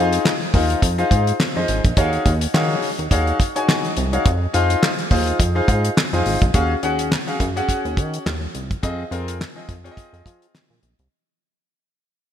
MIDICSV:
0, 0, Header, 1, 4, 480
1, 0, Start_track
1, 0, Tempo, 571429
1, 1656, Time_signature, 4, 2, 24, 8
1, 10351, End_track
2, 0, Start_track
2, 0, Title_t, "Grand piano"
2, 0, Program_c, 0, 0
2, 0, Note_on_c, 0, 63, 104
2, 0, Note_on_c, 0, 65, 94
2, 0, Note_on_c, 0, 68, 98
2, 0, Note_on_c, 0, 72, 93
2, 0, Note_on_c, 0, 77, 111
2, 255, Note_off_c, 0, 63, 0
2, 255, Note_off_c, 0, 65, 0
2, 256, Note_off_c, 0, 72, 0
2, 257, Note_off_c, 0, 68, 0
2, 259, Note_off_c, 0, 77, 0
2, 451, Note_on_c, 0, 63, 90
2, 454, Note_on_c, 0, 65, 78
2, 456, Note_on_c, 0, 68, 77
2, 459, Note_on_c, 0, 72, 73
2, 459, Note_on_c, 0, 77, 88
2, 666, Note_off_c, 0, 63, 0
2, 667, Note_off_c, 0, 65, 0
2, 668, Note_off_c, 0, 68, 0
2, 669, Note_off_c, 0, 72, 0
2, 669, Note_off_c, 0, 77, 0
2, 824, Note_on_c, 0, 63, 87
2, 826, Note_on_c, 0, 65, 85
2, 827, Note_on_c, 0, 68, 79
2, 830, Note_on_c, 0, 72, 82
2, 830, Note_on_c, 0, 77, 97
2, 1100, Note_off_c, 0, 63, 0
2, 1101, Note_off_c, 0, 65, 0
2, 1102, Note_off_c, 0, 68, 0
2, 1103, Note_off_c, 0, 72, 0
2, 1103, Note_off_c, 0, 77, 0
2, 1308, Note_on_c, 0, 63, 82
2, 1310, Note_on_c, 0, 65, 72
2, 1311, Note_on_c, 0, 68, 77
2, 1313, Note_on_c, 0, 72, 80
2, 1316, Note_on_c, 0, 75, 92
2, 1513, Note_off_c, 0, 63, 0
2, 1515, Note_off_c, 0, 65, 0
2, 1515, Note_off_c, 0, 68, 0
2, 1516, Note_off_c, 0, 72, 0
2, 1517, Note_off_c, 0, 75, 0
2, 1657, Note_on_c, 0, 63, 99
2, 1657, Note_on_c, 0, 66, 87
2, 1659, Note_on_c, 0, 68, 91
2, 1661, Note_on_c, 0, 73, 93
2, 1664, Note_on_c, 0, 77, 102
2, 1938, Note_off_c, 0, 63, 0
2, 1938, Note_off_c, 0, 66, 0
2, 1939, Note_off_c, 0, 68, 0
2, 1941, Note_off_c, 0, 73, 0
2, 1942, Note_off_c, 0, 77, 0
2, 2132, Note_on_c, 0, 63, 102
2, 2135, Note_on_c, 0, 66, 85
2, 2136, Note_on_c, 0, 68, 96
2, 2139, Note_on_c, 0, 73, 86
2, 2140, Note_on_c, 0, 77, 109
2, 2416, Note_off_c, 0, 63, 0
2, 2418, Note_off_c, 0, 66, 0
2, 2418, Note_off_c, 0, 68, 0
2, 2420, Note_off_c, 0, 73, 0
2, 2420, Note_off_c, 0, 77, 0
2, 2612, Note_on_c, 0, 63, 100
2, 2615, Note_on_c, 0, 66, 85
2, 2616, Note_on_c, 0, 68, 85
2, 2618, Note_on_c, 0, 73, 84
2, 2618, Note_on_c, 0, 77, 105
2, 2826, Note_off_c, 0, 63, 0
2, 2828, Note_off_c, 0, 66, 0
2, 2828, Note_off_c, 0, 68, 0
2, 2829, Note_off_c, 0, 73, 0
2, 2829, Note_off_c, 0, 77, 0
2, 2987, Note_on_c, 0, 63, 83
2, 2987, Note_on_c, 0, 66, 79
2, 2991, Note_on_c, 0, 68, 81
2, 2991, Note_on_c, 0, 73, 83
2, 2993, Note_on_c, 0, 80, 101
2, 3262, Note_off_c, 0, 63, 0
2, 3262, Note_off_c, 0, 66, 0
2, 3264, Note_off_c, 0, 68, 0
2, 3264, Note_off_c, 0, 73, 0
2, 3265, Note_off_c, 0, 80, 0
2, 3465, Note_on_c, 0, 63, 79
2, 3468, Note_on_c, 0, 66, 78
2, 3469, Note_on_c, 0, 68, 75
2, 3471, Note_on_c, 0, 73, 80
2, 3473, Note_on_c, 0, 77, 97
2, 3574, Note_off_c, 0, 63, 0
2, 3575, Note_off_c, 0, 66, 0
2, 3575, Note_off_c, 0, 68, 0
2, 3577, Note_off_c, 0, 73, 0
2, 3578, Note_off_c, 0, 77, 0
2, 3809, Note_on_c, 0, 63, 96
2, 3812, Note_on_c, 0, 65, 99
2, 3813, Note_on_c, 0, 68, 95
2, 3814, Note_on_c, 0, 72, 88
2, 3815, Note_on_c, 0, 77, 123
2, 4094, Note_off_c, 0, 63, 0
2, 4096, Note_off_c, 0, 65, 0
2, 4096, Note_off_c, 0, 68, 0
2, 4097, Note_off_c, 0, 72, 0
2, 4098, Note_off_c, 0, 77, 0
2, 4291, Note_on_c, 0, 63, 83
2, 4293, Note_on_c, 0, 65, 80
2, 4294, Note_on_c, 0, 68, 80
2, 4297, Note_on_c, 0, 72, 77
2, 4298, Note_on_c, 0, 77, 97
2, 4506, Note_off_c, 0, 63, 0
2, 4507, Note_off_c, 0, 65, 0
2, 4507, Note_off_c, 0, 68, 0
2, 4509, Note_off_c, 0, 72, 0
2, 4509, Note_off_c, 0, 77, 0
2, 4663, Note_on_c, 0, 63, 87
2, 4665, Note_on_c, 0, 65, 78
2, 4666, Note_on_c, 0, 68, 85
2, 4669, Note_on_c, 0, 72, 79
2, 4669, Note_on_c, 0, 77, 100
2, 4940, Note_off_c, 0, 63, 0
2, 4941, Note_off_c, 0, 65, 0
2, 4941, Note_off_c, 0, 68, 0
2, 4943, Note_off_c, 0, 72, 0
2, 4943, Note_off_c, 0, 77, 0
2, 5149, Note_on_c, 0, 63, 84
2, 5150, Note_on_c, 0, 65, 77
2, 5154, Note_on_c, 0, 68, 76
2, 5154, Note_on_c, 0, 72, 71
2, 5156, Note_on_c, 0, 77, 89
2, 5354, Note_off_c, 0, 63, 0
2, 5355, Note_off_c, 0, 65, 0
2, 5356, Note_off_c, 0, 68, 0
2, 5356, Note_off_c, 0, 72, 0
2, 5358, Note_off_c, 0, 77, 0
2, 5493, Note_on_c, 0, 61, 93
2, 5497, Note_on_c, 0, 66, 89
2, 5498, Note_on_c, 0, 68, 95
2, 5500, Note_on_c, 0, 77, 113
2, 5646, Note_off_c, 0, 61, 0
2, 5647, Note_off_c, 0, 66, 0
2, 5648, Note_off_c, 0, 68, 0
2, 5649, Note_off_c, 0, 77, 0
2, 5737, Note_on_c, 0, 61, 92
2, 5738, Note_on_c, 0, 66, 77
2, 5740, Note_on_c, 0, 68, 80
2, 5743, Note_on_c, 0, 78, 105
2, 5949, Note_off_c, 0, 61, 0
2, 5949, Note_off_c, 0, 66, 0
2, 5950, Note_off_c, 0, 68, 0
2, 5951, Note_off_c, 0, 78, 0
2, 6106, Note_on_c, 0, 61, 75
2, 6108, Note_on_c, 0, 66, 76
2, 6111, Note_on_c, 0, 68, 73
2, 6114, Note_on_c, 0, 77, 93
2, 6235, Note_off_c, 0, 61, 0
2, 6236, Note_off_c, 0, 66, 0
2, 6237, Note_off_c, 0, 68, 0
2, 6239, Note_off_c, 0, 77, 0
2, 6352, Note_on_c, 0, 61, 105
2, 6356, Note_on_c, 0, 66, 92
2, 6356, Note_on_c, 0, 68, 89
2, 6359, Note_on_c, 0, 78, 116
2, 6897, Note_off_c, 0, 61, 0
2, 6899, Note_off_c, 0, 66, 0
2, 6899, Note_off_c, 0, 68, 0
2, 6901, Note_off_c, 0, 78, 0
2, 7415, Note_on_c, 0, 60, 104
2, 7415, Note_on_c, 0, 65, 97
2, 7419, Note_on_c, 0, 68, 93
2, 7421, Note_on_c, 0, 75, 108
2, 7566, Note_off_c, 0, 60, 0
2, 7567, Note_off_c, 0, 65, 0
2, 7569, Note_off_c, 0, 68, 0
2, 7569, Note_off_c, 0, 75, 0
2, 7654, Note_on_c, 0, 60, 95
2, 7656, Note_on_c, 0, 65, 84
2, 7660, Note_on_c, 0, 68, 83
2, 7661, Note_on_c, 0, 70, 93
2, 7867, Note_off_c, 0, 60, 0
2, 7868, Note_off_c, 0, 65, 0
2, 7870, Note_off_c, 0, 68, 0
2, 7871, Note_off_c, 0, 70, 0
2, 8028, Note_on_c, 0, 60, 78
2, 8030, Note_on_c, 0, 65, 68
2, 8032, Note_on_c, 0, 68, 76
2, 8033, Note_on_c, 0, 75, 85
2, 8156, Note_off_c, 0, 60, 0
2, 8157, Note_off_c, 0, 65, 0
2, 8158, Note_off_c, 0, 68, 0
2, 8158, Note_off_c, 0, 75, 0
2, 8268, Note_on_c, 0, 60, 101
2, 8269, Note_on_c, 0, 65, 96
2, 8270, Note_on_c, 0, 68, 89
2, 8273, Note_on_c, 0, 73, 83
2, 8320, Note_off_c, 0, 73, 0
2, 8329, Note_on_c, 0, 75, 113
2, 8815, Note_off_c, 0, 60, 0
2, 8816, Note_off_c, 0, 65, 0
2, 8816, Note_off_c, 0, 68, 0
2, 8845, Note_off_c, 0, 75, 0
2, 10351, End_track
3, 0, Start_track
3, 0, Title_t, "Analog synth bass"
3, 0, Program_c, 1, 38
3, 0, Note_on_c, 1, 41, 120
3, 157, Note_off_c, 1, 41, 0
3, 453, Note_on_c, 1, 39, 97
3, 634, Note_off_c, 1, 39, 0
3, 694, Note_on_c, 1, 41, 95
3, 874, Note_off_c, 1, 41, 0
3, 933, Note_on_c, 1, 44, 99
3, 1114, Note_off_c, 1, 44, 0
3, 1312, Note_on_c, 1, 41, 86
3, 1390, Note_off_c, 1, 41, 0
3, 1418, Note_on_c, 1, 32, 89
3, 1518, Note_off_c, 1, 32, 0
3, 1550, Note_on_c, 1, 34, 93
3, 1629, Note_off_c, 1, 34, 0
3, 1655, Note_on_c, 1, 39, 118
3, 1835, Note_off_c, 1, 39, 0
3, 1895, Note_on_c, 1, 39, 116
3, 2075, Note_off_c, 1, 39, 0
3, 2135, Note_on_c, 1, 51, 103
3, 2315, Note_off_c, 1, 51, 0
3, 2511, Note_on_c, 1, 39, 97
3, 2590, Note_off_c, 1, 39, 0
3, 2613, Note_on_c, 1, 39, 104
3, 2794, Note_off_c, 1, 39, 0
3, 3337, Note_on_c, 1, 36, 108
3, 3516, Note_off_c, 1, 36, 0
3, 3576, Note_on_c, 1, 41, 102
3, 3756, Note_off_c, 1, 41, 0
3, 3817, Note_on_c, 1, 41, 112
3, 3996, Note_off_c, 1, 41, 0
3, 4293, Note_on_c, 1, 39, 94
3, 4474, Note_off_c, 1, 39, 0
3, 4533, Note_on_c, 1, 41, 95
3, 4714, Note_off_c, 1, 41, 0
3, 4774, Note_on_c, 1, 44, 99
3, 4954, Note_off_c, 1, 44, 0
3, 5150, Note_on_c, 1, 41, 85
3, 5229, Note_off_c, 1, 41, 0
3, 5259, Note_on_c, 1, 32, 85
3, 5358, Note_off_c, 1, 32, 0
3, 5391, Note_on_c, 1, 34, 100
3, 5470, Note_off_c, 1, 34, 0
3, 5496, Note_on_c, 1, 39, 102
3, 5676, Note_off_c, 1, 39, 0
3, 5739, Note_on_c, 1, 39, 100
3, 6018, Note_off_c, 1, 39, 0
3, 6217, Note_on_c, 1, 42, 95
3, 6396, Note_off_c, 1, 42, 0
3, 6595, Note_on_c, 1, 39, 86
3, 6698, Note_on_c, 1, 51, 104
3, 6710, Note_off_c, 1, 39, 0
3, 6877, Note_off_c, 1, 51, 0
3, 6939, Note_on_c, 1, 39, 104
3, 7117, Note_off_c, 1, 39, 0
3, 7180, Note_on_c, 1, 36, 88
3, 7358, Note_off_c, 1, 36, 0
3, 7419, Note_on_c, 1, 41, 111
3, 7598, Note_off_c, 1, 41, 0
3, 7655, Note_on_c, 1, 41, 103
3, 7935, Note_off_c, 1, 41, 0
3, 8139, Note_on_c, 1, 41, 84
3, 8318, Note_off_c, 1, 41, 0
3, 8509, Note_on_c, 1, 41, 92
3, 8589, Note_off_c, 1, 41, 0
3, 8617, Note_on_c, 1, 53, 101
3, 8796, Note_off_c, 1, 53, 0
3, 8991, Note_on_c, 1, 46, 87
3, 9070, Note_off_c, 1, 46, 0
3, 9097, Note_on_c, 1, 34, 87
3, 9197, Note_off_c, 1, 34, 0
3, 9232, Note_on_c, 1, 36, 100
3, 9310, Note_off_c, 1, 36, 0
3, 10351, End_track
4, 0, Start_track
4, 0, Title_t, "Drums"
4, 106, Note_on_c, 9, 42, 80
4, 190, Note_off_c, 9, 42, 0
4, 213, Note_on_c, 9, 38, 119
4, 222, Note_on_c, 9, 39, 95
4, 297, Note_off_c, 9, 38, 0
4, 306, Note_off_c, 9, 39, 0
4, 452, Note_on_c, 9, 36, 107
4, 452, Note_on_c, 9, 46, 78
4, 536, Note_off_c, 9, 36, 0
4, 536, Note_off_c, 9, 46, 0
4, 589, Note_on_c, 9, 42, 51
4, 673, Note_off_c, 9, 42, 0
4, 692, Note_on_c, 9, 36, 108
4, 696, Note_on_c, 9, 42, 104
4, 776, Note_off_c, 9, 36, 0
4, 780, Note_off_c, 9, 42, 0
4, 827, Note_on_c, 9, 42, 37
4, 911, Note_off_c, 9, 42, 0
4, 932, Note_on_c, 9, 36, 104
4, 937, Note_on_c, 9, 42, 75
4, 1016, Note_off_c, 9, 36, 0
4, 1021, Note_off_c, 9, 42, 0
4, 1070, Note_on_c, 9, 42, 59
4, 1154, Note_off_c, 9, 42, 0
4, 1174, Note_on_c, 9, 38, 120
4, 1183, Note_on_c, 9, 39, 81
4, 1258, Note_off_c, 9, 38, 0
4, 1267, Note_off_c, 9, 39, 0
4, 1413, Note_on_c, 9, 42, 70
4, 1497, Note_off_c, 9, 42, 0
4, 1550, Note_on_c, 9, 36, 103
4, 1550, Note_on_c, 9, 42, 50
4, 1634, Note_off_c, 9, 36, 0
4, 1634, Note_off_c, 9, 42, 0
4, 1653, Note_on_c, 9, 42, 89
4, 1655, Note_on_c, 9, 36, 126
4, 1737, Note_off_c, 9, 42, 0
4, 1739, Note_off_c, 9, 36, 0
4, 1787, Note_on_c, 9, 42, 37
4, 1871, Note_off_c, 9, 42, 0
4, 1895, Note_on_c, 9, 36, 108
4, 1895, Note_on_c, 9, 42, 79
4, 1979, Note_off_c, 9, 36, 0
4, 1979, Note_off_c, 9, 42, 0
4, 2027, Note_on_c, 9, 42, 81
4, 2111, Note_off_c, 9, 42, 0
4, 2136, Note_on_c, 9, 38, 127
4, 2145, Note_on_c, 9, 39, 100
4, 2220, Note_off_c, 9, 38, 0
4, 2229, Note_off_c, 9, 39, 0
4, 2372, Note_on_c, 9, 46, 79
4, 2456, Note_off_c, 9, 46, 0
4, 2512, Note_on_c, 9, 42, 49
4, 2596, Note_off_c, 9, 42, 0
4, 2613, Note_on_c, 9, 36, 102
4, 2615, Note_on_c, 9, 42, 97
4, 2697, Note_off_c, 9, 36, 0
4, 2699, Note_off_c, 9, 42, 0
4, 2750, Note_on_c, 9, 42, 37
4, 2834, Note_off_c, 9, 42, 0
4, 2853, Note_on_c, 9, 36, 107
4, 2860, Note_on_c, 9, 42, 86
4, 2937, Note_off_c, 9, 36, 0
4, 2944, Note_off_c, 9, 42, 0
4, 2990, Note_on_c, 9, 42, 56
4, 3074, Note_off_c, 9, 42, 0
4, 3096, Note_on_c, 9, 38, 112
4, 3105, Note_on_c, 9, 39, 90
4, 3180, Note_off_c, 9, 38, 0
4, 3189, Note_off_c, 9, 39, 0
4, 3231, Note_on_c, 9, 42, 34
4, 3315, Note_off_c, 9, 42, 0
4, 3331, Note_on_c, 9, 42, 72
4, 3415, Note_off_c, 9, 42, 0
4, 3470, Note_on_c, 9, 42, 50
4, 3554, Note_off_c, 9, 42, 0
4, 3574, Note_on_c, 9, 42, 96
4, 3575, Note_on_c, 9, 36, 126
4, 3658, Note_off_c, 9, 42, 0
4, 3659, Note_off_c, 9, 36, 0
4, 3814, Note_on_c, 9, 42, 82
4, 3898, Note_off_c, 9, 42, 0
4, 3949, Note_on_c, 9, 42, 72
4, 4033, Note_off_c, 9, 42, 0
4, 4054, Note_on_c, 9, 38, 127
4, 4064, Note_on_c, 9, 39, 96
4, 4138, Note_off_c, 9, 38, 0
4, 4148, Note_off_c, 9, 39, 0
4, 4187, Note_on_c, 9, 42, 39
4, 4271, Note_off_c, 9, 42, 0
4, 4292, Note_on_c, 9, 36, 106
4, 4292, Note_on_c, 9, 46, 83
4, 4376, Note_off_c, 9, 36, 0
4, 4376, Note_off_c, 9, 46, 0
4, 4430, Note_on_c, 9, 42, 57
4, 4514, Note_off_c, 9, 42, 0
4, 4532, Note_on_c, 9, 36, 109
4, 4535, Note_on_c, 9, 42, 104
4, 4616, Note_off_c, 9, 36, 0
4, 4619, Note_off_c, 9, 42, 0
4, 4772, Note_on_c, 9, 36, 100
4, 4779, Note_on_c, 9, 42, 81
4, 4856, Note_off_c, 9, 36, 0
4, 4863, Note_off_c, 9, 42, 0
4, 4910, Note_on_c, 9, 42, 61
4, 4994, Note_off_c, 9, 42, 0
4, 5017, Note_on_c, 9, 38, 114
4, 5026, Note_on_c, 9, 39, 95
4, 5101, Note_off_c, 9, 38, 0
4, 5110, Note_off_c, 9, 39, 0
4, 5154, Note_on_c, 9, 42, 35
4, 5238, Note_off_c, 9, 42, 0
4, 5256, Note_on_c, 9, 46, 66
4, 5340, Note_off_c, 9, 46, 0
4, 5390, Note_on_c, 9, 42, 50
4, 5391, Note_on_c, 9, 36, 108
4, 5474, Note_off_c, 9, 42, 0
4, 5475, Note_off_c, 9, 36, 0
4, 5494, Note_on_c, 9, 42, 89
4, 5496, Note_on_c, 9, 36, 119
4, 5578, Note_off_c, 9, 42, 0
4, 5580, Note_off_c, 9, 36, 0
4, 5737, Note_on_c, 9, 42, 78
4, 5821, Note_off_c, 9, 42, 0
4, 5871, Note_on_c, 9, 42, 78
4, 5955, Note_off_c, 9, 42, 0
4, 5978, Note_on_c, 9, 38, 114
4, 5987, Note_on_c, 9, 39, 99
4, 6062, Note_off_c, 9, 38, 0
4, 6071, Note_off_c, 9, 39, 0
4, 6114, Note_on_c, 9, 42, 36
4, 6198, Note_off_c, 9, 42, 0
4, 6216, Note_on_c, 9, 36, 95
4, 6219, Note_on_c, 9, 42, 76
4, 6300, Note_off_c, 9, 36, 0
4, 6303, Note_off_c, 9, 42, 0
4, 6358, Note_on_c, 9, 42, 48
4, 6442, Note_off_c, 9, 42, 0
4, 6456, Note_on_c, 9, 36, 96
4, 6462, Note_on_c, 9, 42, 92
4, 6540, Note_off_c, 9, 36, 0
4, 6546, Note_off_c, 9, 42, 0
4, 6598, Note_on_c, 9, 42, 36
4, 6682, Note_off_c, 9, 42, 0
4, 6697, Note_on_c, 9, 36, 112
4, 6704, Note_on_c, 9, 42, 78
4, 6781, Note_off_c, 9, 36, 0
4, 6788, Note_off_c, 9, 42, 0
4, 6835, Note_on_c, 9, 42, 56
4, 6919, Note_off_c, 9, 42, 0
4, 6940, Note_on_c, 9, 38, 113
4, 6949, Note_on_c, 9, 39, 81
4, 7024, Note_off_c, 9, 38, 0
4, 7033, Note_off_c, 9, 39, 0
4, 7179, Note_on_c, 9, 42, 66
4, 7263, Note_off_c, 9, 42, 0
4, 7315, Note_on_c, 9, 36, 97
4, 7316, Note_on_c, 9, 42, 46
4, 7399, Note_off_c, 9, 36, 0
4, 7400, Note_off_c, 9, 42, 0
4, 7419, Note_on_c, 9, 36, 120
4, 7420, Note_on_c, 9, 42, 89
4, 7503, Note_off_c, 9, 36, 0
4, 7504, Note_off_c, 9, 42, 0
4, 7662, Note_on_c, 9, 42, 70
4, 7746, Note_off_c, 9, 42, 0
4, 7797, Note_on_c, 9, 42, 78
4, 7881, Note_off_c, 9, 42, 0
4, 7903, Note_on_c, 9, 38, 123
4, 7912, Note_on_c, 9, 39, 89
4, 7987, Note_off_c, 9, 38, 0
4, 7996, Note_off_c, 9, 39, 0
4, 8137, Note_on_c, 9, 36, 105
4, 8139, Note_on_c, 9, 42, 70
4, 8221, Note_off_c, 9, 36, 0
4, 8223, Note_off_c, 9, 42, 0
4, 8279, Note_on_c, 9, 42, 48
4, 8363, Note_off_c, 9, 42, 0
4, 8376, Note_on_c, 9, 36, 107
4, 8381, Note_on_c, 9, 42, 91
4, 8460, Note_off_c, 9, 36, 0
4, 8465, Note_off_c, 9, 42, 0
4, 8516, Note_on_c, 9, 42, 38
4, 8600, Note_off_c, 9, 42, 0
4, 8616, Note_on_c, 9, 36, 105
4, 8624, Note_on_c, 9, 42, 78
4, 8700, Note_off_c, 9, 36, 0
4, 8708, Note_off_c, 9, 42, 0
4, 8754, Note_on_c, 9, 42, 56
4, 8838, Note_off_c, 9, 42, 0
4, 8859, Note_on_c, 9, 38, 109
4, 8868, Note_on_c, 9, 39, 90
4, 8943, Note_off_c, 9, 38, 0
4, 8952, Note_off_c, 9, 39, 0
4, 9096, Note_on_c, 9, 42, 58
4, 9180, Note_off_c, 9, 42, 0
4, 9232, Note_on_c, 9, 42, 47
4, 9316, Note_off_c, 9, 42, 0
4, 10351, End_track
0, 0, End_of_file